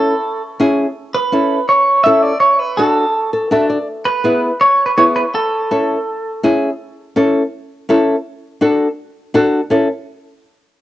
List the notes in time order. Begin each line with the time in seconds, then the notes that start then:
Already playing: C#4 E4 A4
0.60 C#4 E4 G#4
1.14 B4
1.32 C#4 E4 A4
1.69 C#5
2.04 C#4 E4 A4 E5
2.22 D5
2.40 C#5
2.59 B4
2.77 D4 F#4 A4
3.33 A4
3.51 D4 F#4 A4 E5
3.70 D5
4.05 B4
4.24 B3 E4 G#4
4.61 C#5
4.86 B4
4.97 B3 E4 G#4 C#5
5.16 B4
5.35 A4
5.71 C#4 E4 A4
6.43 C#4 E4 G#4
7.16 C#4 E4 A4
7.89 C#4 E4 A4
8.61 D4 F#4 A4
9.34 D4 F#4 A4
9.70 C#4 E4 A4